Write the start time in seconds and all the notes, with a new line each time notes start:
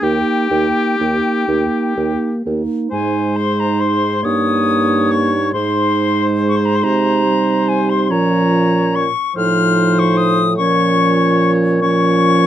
0.01 D#2 A#3 D#4 G4 G5
0.50 D#2 A#3 D#4
0.99 D#2 A#3 D#4
1.48 D#2 A#3 D#4
1.96 D#2 A#3 D#4
2.45 D#2 A#3 D#4
2.91 G#2 G#3 D#4 C5 G#5
3.36 C6
3.60 A#5
3.81 C6
4.23 G2 A#3 D#4 C#5 D#6
5.11 C#6
5.53 G#2 G#3 D#4 C5 C6
6.48 C#6
6.56 C6
6.65 A#5
6.76 C6
6.84 C3 A#5
7.25 G3
7.69 G#5
7.90 C6
8.10 A#2 F3 C#4 C#5 A#5
8.96 C#6
9.35 A2 F3 D#4 C5 F6
9.99 C#6
10.17 D#6
10.57 A#2 F3 C#4 C#5 C#6
11.81 F3 C#4 C#5 C#6